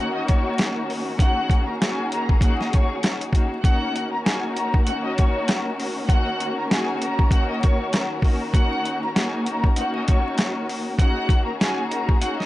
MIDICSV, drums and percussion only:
0, 0, Header, 1, 2, 480
1, 0, Start_track
1, 0, Key_signature, -6, "minor"
1, 0, Tempo, 612245
1, 935, Time_signature, 4, 2, 24, 8
1, 9767, End_track
2, 0, Start_track
2, 0, Title_t, "Drums"
2, 222, Note_on_c, 9, 42, 79
2, 228, Note_on_c, 9, 36, 99
2, 301, Note_off_c, 9, 42, 0
2, 307, Note_off_c, 9, 36, 0
2, 457, Note_on_c, 9, 42, 105
2, 465, Note_on_c, 9, 38, 115
2, 535, Note_off_c, 9, 42, 0
2, 543, Note_off_c, 9, 38, 0
2, 706, Note_on_c, 9, 46, 56
2, 784, Note_off_c, 9, 46, 0
2, 934, Note_on_c, 9, 36, 117
2, 941, Note_on_c, 9, 42, 95
2, 1012, Note_off_c, 9, 36, 0
2, 1019, Note_off_c, 9, 42, 0
2, 1172, Note_on_c, 9, 36, 108
2, 1182, Note_on_c, 9, 42, 73
2, 1251, Note_off_c, 9, 36, 0
2, 1260, Note_off_c, 9, 42, 0
2, 1424, Note_on_c, 9, 38, 112
2, 1424, Note_on_c, 9, 42, 86
2, 1503, Note_off_c, 9, 38, 0
2, 1503, Note_off_c, 9, 42, 0
2, 1662, Note_on_c, 9, 42, 74
2, 1740, Note_off_c, 9, 42, 0
2, 1797, Note_on_c, 9, 36, 85
2, 1875, Note_off_c, 9, 36, 0
2, 1889, Note_on_c, 9, 36, 104
2, 1896, Note_on_c, 9, 42, 102
2, 1967, Note_off_c, 9, 36, 0
2, 1975, Note_off_c, 9, 42, 0
2, 2044, Note_on_c, 9, 38, 36
2, 2122, Note_off_c, 9, 38, 0
2, 2142, Note_on_c, 9, 42, 80
2, 2148, Note_on_c, 9, 36, 99
2, 2220, Note_off_c, 9, 42, 0
2, 2227, Note_off_c, 9, 36, 0
2, 2376, Note_on_c, 9, 42, 102
2, 2384, Note_on_c, 9, 38, 115
2, 2455, Note_off_c, 9, 42, 0
2, 2462, Note_off_c, 9, 38, 0
2, 2519, Note_on_c, 9, 42, 60
2, 2597, Note_off_c, 9, 42, 0
2, 2607, Note_on_c, 9, 36, 86
2, 2624, Note_on_c, 9, 42, 78
2, 2686, Note_off_c, 9, 36, 0
2, 2703, Note_off_c, 9, 42, 0
2, 2853, Note_on_c, 9, 36, 113
2, 2859, Note_on_c, 9, 42, 93
2, 2931, Note_off_c, 9, 36, 0
2, 2938, Note_off_c, 9, 42, 0
2, 3101, Note_on_c, 9, 42, 70
2, 3180, Note_off_c, 9, 42, 0
2, 3342, Note_on_c, 9, 38, 113
2, 3342, Note_on_c, 9, 42, 86
2, 3421, Note_off_c, 9, 38, 0
2, 3421, Note_off_c, 9, 42, 0
2, 3579, Note_on_c, 9, 42, 76
2, 3658, Note_off_c, 9, 42, 0
2, 3716, Note_on_c, 9, 36, 89
2, 3794, Note_off_c, 9, 36, 0
2, 3815, Note_on_c, 9, 42, 103
2, 3893, Note_off_c, 9, 42, 0
2, 4060, Note_on_c, 9, 42, 84
2, 4067, Note_on_c, 9, 36, 97
2, 4139, Note_off_c, 9, 42, 0
2, 4146, Note_off_c, 9, 36, 0
2, 4296, Note_on_c, 9, 42, 100
2, 4303, Note_on_c, 9, 38, 116
2, 4374, Note_off_c, 9, 42, 0
2, 4381, Note_off_c, 9, 38, 0
2, 4544, Note_on_c, 9, 46, 58
2, 4622, Note_off_c, 9, 46, 0
2, 4773, Note_on_c, 9, 36, 116
2, 4780, Note_on_c, 9, 42, 91
2, 4851, Note_off_c, 9, 36, 0
2, 4858, Note_off_c, 9, 42, 0
2, 5021, Note_on_c, 9, 42, 71
2, 5100, Note_off_c, 9, 42, 0
2, 5263, Note_on_c, 9, 38, 115
2, 5263, Note_on_c, 9, 42, 90
2, 5341, Note_off_c, 9, 38, 0
2, 5341, Note_off_c, 9, 42, 0
2, 5500, Note_on_c, 9, 42, 75
2, 5579, Note_off_c, 9, 42, 0
2, 5636, Note_on_c, 9, 36, 88
2, 5715, Note_off_c, 9, 36, 0
2, 5728, Note_on_c, 9, 36, 103
2, 5736, Note_on_c, 9, 42, 107
2, 5807, Note_off_c, 9, 36, 0
2, 5814, Note_off_c, 9, 42, 0
2, 5982, Note_on_c, 9, 42, 81
2, 5988, Note_on_c, 9, 36, 97
2, 6061, Note_off_c, 9, 42, 0
2, 6066, Note_off_c, 9, 36, 0
2, 6216, Note_on_c, 9, 42, 98
2, 6224, Note_on_c, 9, 38, 117
2, 6294, Note_off_c, 9, 42, 0
2, 6302, Note_off_c, 9, 38, 0
2, 6447, Note_on_c, 9, 36, 90
2, 6464, Note_on_c, 9, 46, 57
2, 6526, Note_off_c, 9, 36, 0
2, 6542, Note_off_c, 9, 46, 0
2, 6693, Note_on_c, 9, 36, 113
2, 6699, Note_on_c, 9, 42, 92
2, 6771, Note_off_c, 9, 36, 0
2, 6778, Note_off_c, 9, 42, 0
2, 6941, Note_on_c, 9, 42, 72
2, 7020, Note_off_c, 9, 42, 0
2, 7182, Note_on_c, 9, 38, 110
2, 7182, Note_on_c, 9, 42, 90
2, 7261, Note_off_c, 9, 38, 0
2, 7261, Note_off_c, 9, 42, 0
2, 7420, Note_on_c, 9, 42, 77
2, 7498, Note_off_c, 9, 42, 0
2, 7556, Note_on_c, 9, 36, 90
2, 7634, Note_off_c, 9, 36, 0
2, 7655, Note_on_c, 9, 42, 111
2, 7733, Note_off_c, 9, 42, 0
2, 7901, Note_on_c, 9, 42, 82
2, 7907, Note_on_c, 9, 36, 100
2, 7979, Note_off_c, 9, 42, 0
2, 7985, Note_off_c, 9, 36, 0
2, 8135, Note_on_c, 9, 42, 100
2, 8143, Note_on_c, 9, 38, 119
2, 8214, Note_off_c, 9, 42, 0
2, 8221, Note_off_c, 9, 38, 0
2, 8384, Note_on_c, 9, 46, 59
2, 8462, Note_off_c, 9, 46, 0
2, 8612, Note_on_c, 9, 36, 116
2, 8618, Note_on_c, 9, 42, 92
2, 8691, Note_off_c, 9, 36, 0
2, 8697, Note_off_c, 9, 42, 0
2, 8851, Note_on_c, 9, 36, 106
2, 8861, Note_on_c, 9, 42, 73
2, 8929, Note_off_c, 9, 36, 0
2, 8939, Note_off_c, 9, 42, 0
2, 9103, Note_on_c, 9, 42, 87
2, 9104, Note_on_c, 9, 38, 109
2, 9182, Note_off_c, 9, 38, 0
2, 9182, Note_off_c, 9, 42, 0
2, 9341, Note_on_c, 9, 42, 77
2, 9420, Note_off_c, 9, 42, 0
2, 9476, Note_on_c, 9, 36, 91
2, 9555, Note_off_c, 9, 36, 0
2, 9576, Note_on_c, 9, 42, 110
2, 9655, Note_off_c, 9, 42, 0
2, 9724, Note_on_c, 9, 38, 37
2, 9767, Note_off_c, 9, 38, 0
2, 9767, End_track
0, 0, End_of_file